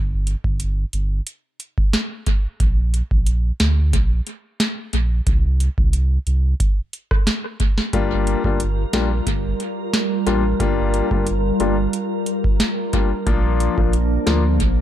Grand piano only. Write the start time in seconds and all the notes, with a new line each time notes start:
7.93 G3 A#3 D4 F4
8.44 G3 A#3 D4 F4
8.93 G3 A#3 D4 F4
10.26 G3 A#3 D4 F4
10.60 G3 A#3 D4 F4
11.11 G3 A#3 D4 F4
11.60 G3 A#3 D4 F4
12.93 G3 A#3 D4 F4
13.26 F3 A#3 D4 F4
13.77 F3 A#3 D4 F4
14.26 F3 A#3 D4 F4